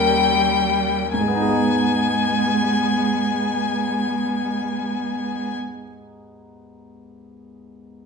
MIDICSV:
0, 0, Header, 1, 5, 480
1, 0, Start_track
1, 0, Key_signature, 5, "minor"
1, 0, Tempo, 1372998
1, 396, Time_signature, 6, 3, 24, 8
1, 396, Tempo, 1301518
1, 876, Tempo, 1263158
1, 1836, Tempo, 1312910
1, 2968, End_track
2, 0, Start_track
2, 0, Title_t, "Violin"
2, 0, Program_c, 0, 40
2, 0, Note_on_c, 0, 79, 80
2, 395, Note_off_c, 0, 79, 0
2, 397, Note_on_c, 0, 80, 65
2, 2049, Note_off_c, 0, 80, 0
2, 2968, End_track
3, 0, Start_track
3, 0, Title_t, "Grand piano"
3, 0, Program_c, 1, 0
3, 0, Control_c, 1, 64, 127
3, 0, Note_on_c, 1, 39, 55
3, 0, Note_on_c, 1, 61, 41
3, 0, Note_on_c, 1, 63, 40
3, 0, Note_on_c, 1, 70, 38
3, 383, Note_off_c, 1, 61, 0
3, 384, Note_off_c, 1, 39, 0
3, 385, Note_off_c, 1, 63, 0
3, 386, Note_off_c, 1, 70, 0
3, 397, Note_on_c, 1, 44, 42
3, 404, Control_c, 1, 64, 0
3, 424, Note_on_c, 1, 56, 41
3, 450, Note_on_c, 1, 59, 44
3, 476, Note_on_c, 1, 63, 45
3, 488, Control_c, 1, 64, 127
3, 502, Note_on_c, 1, 68, 45
3, 527, Note_on_c, 1, 75, 43
3, 2050, Note_off_c, 1, 44, 0
3, 2076, Note_off_c, 1, 56, 0
3, 2102, Note_off_c, 1, 59, 0
3, 2127, Note_off_c, 1, 63, 0
3, 2154, Note_off_c, 1, 68, 0
3, 2178, Note_off_c, 1, 75, 0
3, 2968, End_track
4, 0, Start_track
4, 0, Title_t, "Viola"
4, 0, Program_c, 2, 41
4, 396, Note_on_c, 2, 59, 54
4, 2048, Note_off_c, 2, 59, 0
4, 2968, End_track
5, 0, Start_track
5, 0, Title_t, "Cello"
5, 0, Program_c, 3, 42
5, 0, Note_on_c, 3, 55, 64
5, 380, Note_off_c, 3, 55, 0
5, 396, Note_on_c, 3, 56, 58
5, 2049, Note_off_c, 3, 56, 0
5, 2968, End_track
0, 0, End_of_file